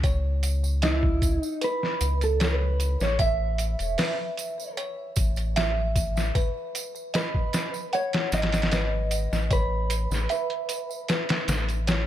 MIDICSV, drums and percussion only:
0, 0, Header, 1, 2, 480
1, 0, Start_track
1, 0, Tempo, 789474
1, 22, Time_signature, 4, 2, 24, 8
1, 7337, End_track
2, 0, Start_track
2, 0, Title_t, "Drums"
2, 22, Note_on_c, 9, 36, 90
2, 22, Note_on_c, 9, 42, 76
2, 28, Note_on_c, 9, 54, 31
2, 82, Note_off_c, 9, 36, 0
2, 83, Note_off_c, 9, 42, 0
2, 89, Note_off_c, 9, 54, 0
2, 261, Note_on_c, 9, 42, 58
2, 263, Note_on_c, 9, 54, 89
2, 321, Note_off_c, 9, 42, 0
2, 324, Note_off_c, 9, 54, 0
2, 388, Note_on_c, 9, 54, 52
2, 449, Note_off_c, 9, 54, 0
2, 499, Note_on_c, 9, 42, 83
2, 502, Note_on_c, 9, 54, 36
2, 506, Note_on_c, 9, 38, 111
2, 560, Note_off_c, 9, 42, 0
2, 563, Note_off_c, 9, 54, 0
2, 567, Note_off_c, 9, 38, 0
2, 626, Note_on_c, 9, 36, 82
2, 687, Note_off_c, 9, 36, 0
2, 741, Note_on_c, 9, 36, 83
2, 741, Note_on_c, 9, 42, 63
2, 746, Note_on_c, 9, 54, 88
2, 802, Note_off_c, 9, 36, 0
2, 802, Note_off_c, 9, 42, 0
2, 807, Note_off_c, 9, 54, 0
2, 869, Note_on_c, 9, 54, 53
2, 930, Note_off_c, 9, 54, 0
2, 982, Note_on_c, 9, 42, 80
2, 982, Note_on_c, 9, 54, 37
2, 1042, Note_off_c, 9, 42, 0
2, 1043, Note_off_c, 9, 54, 0
2, 1114, Note_on_c, 9, 38, 41
2, 1175, Note_off_c, 9, 38, 0
2, 1220, Note_on_c, 9, 54, 87
2, 1221, Note_on_c, 9, 42, 66
2, 1281, Note_off_c, 9, 54, 0
2, 1282, Note_off_c, 9, 42, 0
2, 1346, Note_on_c, 9, 42, 42
2, 1349, Note_on_c, 9, 54, 50
2, 1406, Note_off_c, 9, 42, 0
2, 1410, Note_off_c, 9, 54, 0
2, 1460, Note_on_c, 9, 42, 82
2, 1467, Note_on_c, 9, 38, 112
2, 1467, Note_on_c, 9, 54, 36
2, 1520, Note_off_c, 9, 42, 0
2, 1528, Note_off_c, 9, 38, 0
2, 1528, Note_off_c, 9, 54, 0
2, 1701, Note_on_c, 9, 42, 63
2, 1706, Note_on_c, 9, 54, 82
2, 1762, Note_off_c, 9, 42, 0
2, 1766, Note_off_c, 9, 54, 0
2, 1826, Note_on_c, 9, 54, 52
2, 1833, Note_on_c, 9, 38, 41
2, 1887, Note_off_c, 9, 54, 0
2, 1893, Note_off_c, 9, 38, 0
2, 1939, Note_on_c, 9, 42, 78
2, 1940, Note_on_c, 9, 36, 99
2, 1943, Note_on_c, 9, 54, 35
2, 2000, Note_off_c, 9, 42, 0
2, 2001, Note_off_c, 9, 36, 0
2, 2004, Note_off_c, 9, 54, 0
2, 2179, Note_on_c, 9, 42, 64
2, 2185, Note_on_c, 9, 54, 73
2, 2240, Note_off_c, 9, 42, 0
2, 2246, Note_off_c, 9, 54, 0
2, 2305, Note_on_c, 9, 42, 42
2, 2312, Note_on_c, 9, 54, 47
2, 2366, Note_off_c, 9, 42, 0
2, 2373, Note_off_c, 9, 54, 0
2, 2419, Note_on_c, 9, 46, 78
2, 2423, Note_on_c, 9, 54, 37
2, 2426, Note_on_c, 9, 38, 109
2, 2480, Note_off_c, 9, 46, 0
2, 2484, Note_off_c, 9, 54, 0
2, 2487, Note_off_c, 9, 38, 0
2, 2660, Note_on_c, 9, 42, 56
2, 2668, Note_on_c, 9, 54, 87
2, 2721, Note_off_c, 9, 42, 0
2, 2728, Note_off_c, 9, 54, 0
2, 2795, Note_on_c, 9, 54, 48
2, 2855, Note_off_c, 9, 54, 0
2, 2901, Note_on_c, 9, 54, 31
2, 2902, Note_on_c, 9, 42, 82
2, 2962, Note_off_c, 9, 54, 0
2, 2963, Note_off_c, 9, 42, 0
2, 3136, Note_on_c, 9, 54, 94
2, 3141, Note_on_c, 9, 36, 94
2, 3141, Note_on_c, 9, 42, 63
2, 3196, Note_off_c, 9, 54, 0
2, 3201, Note_off_c, 9, 42, 0
2, 3202, Note_off_c, 9, 36, 0
2, 3260, Note_on_c, 9, 54, 43
2, 3267, Note_on_c, 9, 42, 41
2, 3321, Note_off_c, 9, 54, 0
2, 3327, Note_off_c, 9, 42, 0
2, 3381, Note_on_c, 9, 42, 82
2, 3384, Note_on_c, 9, 54, 32
2, 3389, Note_on_c, 9, 38, 110
2, 3442, Note_off_c, 9, 42, 0
2, 3445, Note_off_c, 9, 54, 0
2, 3450, Note_off_c, 9, 38, 0
2, 3621, Note_on_c, 9, 36, 96
2, 3621, Note_on_c, 9, 42, 67
2, 3623, Note_on_c, 9, 54, 84
2, 3682, Note_off_c, 9, 36, 0
2, 3682, Note_off_c, 9, 42, 0
2, 3684, Note_off_c, 9, 54, 0
2, 3750, Note_on_c, 9, 54, 49
2, 3755, Note_on_c, 9, 38, 53
2, 3811, Note_off_c, 9, 54, 0
2, 3816, Note_off_c, 9, 38, 0
2, 3862, Note_on_c, 9, 36, 96
2, 3862, Note_on_c, 9, 42, 72
2, 3862, Note_on_c, 9, 54, 38
2, 3922, Note_off_c, 9, 36, 0
2, 3923, Note_off_c, 9, 42, 0
2, 3923, Note_off_c, 9, 54, 0
2, 4103, Note_on_c, 9, 42, 66
2, 4106, Note_on_c, 9, 54, 83
2, 4164, Note_off_c, 9, 42, 0
2, 4167, Note_off_c, 9, 54, 0
2, 4229, Note_on_c, 9, 54, 49
2, 4290, Note_off_c, 9, 54, 0
2, 4340, Note_on_c, 9, 42, 83
2, 4347, Note_on_c, 9, 38, 109
2, 4348, Note_on_c, 9, 54, 37
2, 4401, Note_off_c, 9, 42, 0
2, 4408, Note_off_c, 9, 38, 0
2, 4409, Note_off_c, 9, 54, 0
2, 4465, Note_on_c, 9, 36, 85
2, 4526, Note_off_c, 9, 36, 0
2, 4579, Note_on_c, 9, 42, 68
2, 4582, Note_on_c, 9, 54, 84
2, 4586, Note_on_c, 9, 38, 91
2, 4640, Note_off_c, 9, 42, 0
2, 4643, Note_off_c, 9, 54, 0
2, 4647, Note_off_c, 9, 38, 0
2, 4706, Note_on_c, 9, 54, 46
2, 4766, Note_off_c, 9, 54, 0
2, 4820, Note_on_c, 9, 42, 58
2, 4825, Note_on_c, 9, 54, 33
2, 4881, Note_off_c, 9, 42, 0
2, 4886, Note_off_c, 9, 54, 0
2, 4944, Note_on_c, 9, 42, 74
2, 4952, Note_on_c, 9, 38, 100
2, 5005, Note_off_c, 9, 42, 0
2, 5012, Note_off_c, 9, 38, 0
2, 5059, Note_on_c, 9, 54, 74
2, 5060, Note_on_c, 9, 42, 62
2, 5067, Note_on_c, 9, 38, 86
2, 5120, Note_off_c, 9, 54, 0
2, 5121, Note_off_c, 9, 42, 0
2, 5121, Note_on_c, 9, 42, 66
2, 5128, Note_off_c, 9, 38, 0
2, 5128, Note_on_c, 9, 38, 86
2, 5182, Note_off_c, 9, 42, 0
2, 5183, Note_on_c, 9, 42, 67
2, 5189, Note_off_c, 9, 38, 0
2, 5190, Note_on_c, 9, 38, 86
2, 5193, Note_on_c, 9, 54, 46
2, 5242, Note_off_c, 9, 42, 0
2, 5242, Note_on_c, 9, 42, 66
2, 5249, Note_off_c, 9, 38, 0
2, 5249, Note_on_c, 9, 38, 84
2, 5254, Note_off_c, 9, 54, 0
2, 5299, Note_off_c, 9, 42, 0
2, 5299, Note_on_c, 9, 42, 85
2, 5303, Note_on_c, 9, 54, 33
2, 5306, Note_off_c, 9, 38, 0
2, 5306, Note_on_c, 9, 38, 114
2, 5360, Note_off_c, 9, 42, 0
2, 5363, Note_off_c, 9, 54, 0
2, 5367, Note_off_c, 9, 38, 0
2, 5539, Note_on_c, 9, 42, 71
2, 5541, Note_on_c, 9, 54, 82
2, 5599, Note_off_c, 9, 42, 0
2, 5602, Note_off_c, 9, 54, 0
2, 5671, Note_on_c, 9, 54, 45
2, 5672, Note_on_c, 9, 38, 47
2, 5732, Note_off_c, 9, 54, 0
2, 5733, Note_off_c, 9, 38, 0
2, 5779, Note_on_c, 9, 42, 75
2, 5780, Note_on_c, 9, 36, 102
2, 5782, Note_on_c, 9, 54, 35
2, 5840, Note_off_c, 9, 42, 0
2, 5841, Note_off_c, 9, 36, 0
2, 5843, Note_off_c, 9, 54, 0
2, 6019, Note_on_c, 9, 42, 74
2, 6022, Note_on_c, 9, 54, 79
2, 6080, Note_off_c, 9, 42, 0
2, 6083, Note_off_c, 9, 54, 0
2, 6149, Note_on_c, 9, 54, 49
2, 6152, Note_on_c, 9, 38, 40
2, 6210, Note_off_c, 9, 54, 0
2, 6213, Note_off_c, 9, 38, 0
2, 6258, Note_on_c, 9, 42, 60
2, 6268, Note_on_c, 9, 54, 35
2, 6319, Note_off_c, 9, 42, 0
2, 6328, Note_off_c, 9, 54, 0
2, 6384, Note_on_c, 9, 42, 35
2, 6445, Note_off_c, 9, 42, 0
2, 6498, Note_on_c, 9, 42, 73
2, 6502, Note_on_c, 9, 54, 80
2, 6559, Note_off_c, 9, 42, 0
2, 6562, Note_off_c, 9, 54, 0
2, 6631, Note_on_c, 9, 54, 45
2, 6692, Note_off_c, 9, 54, 0
2, 6740, Note_on_c, 9, 42, 75
2, 6743, Note_on_c, 9, 54, 35
2, 6747, Note_on_c, 9, 38, 100
2, 6800, Note_off_c, 9, 42, 0
2, 6804, Note_off_c, 9, 54, 0
2, 6808, Note_off_c, 9, 38, 0
2, 6865, Note_on_c, 9, 42, 81
2, 6872, Note_on_c, 9, 38, 106
2, 6925, Note_off_c, 9, 42, 0
2, 6933, Note_off_c, 9, 38, 0
2, 6979, Note_on_c, 9, 42, 76
2, 6982, Note_on_c, 9, 54, 89
2, 6987, Note_on_c, 9, 38, 104
2, 7040, Note_off_c, 9, 42, 0
2, 7043, Note_off_c, 9, 54, 0
2, 7048, Note_off_c, 9, 38, 0
2, 7105, Note_on_c, 9, 42, 44
2, 7111, Note_on_c, 9, 54, 44
2, 7165, Note_off_c, 9, 42, 0
2, 7171, Note_off_c, 9, 54, 0
2, 7219, Note_on_c, 9, 42, 88
2, 7220, Note_on_c, 9, 54, 35
2, 7227, Note_on_c, 9, 38, 115
2, 7280, Note_off_c, 9, 42, 0
2, 7281, Note_off_c, 9, 54, 0
2, 7287, Note_off_c, 9, 38, 0
2, 7337, End_track
0, 0, End_of_file